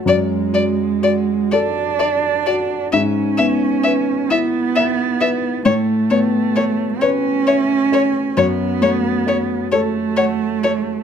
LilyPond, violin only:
\new Staff \with { instrumentName = "Violin" } { \time 6/8 \key fis \minor \tempo 4. = 44 d''8 d''8 d''8 d''8 d''8 d''8 | e''8 e''8 e''8 e''8 e''8 e''8 | cis''8 cis''8 cis''8 cis''8 cis''8 cis''8 | cis''8 cis''8 cis''8 cis''8 cis''8 cis''8 | }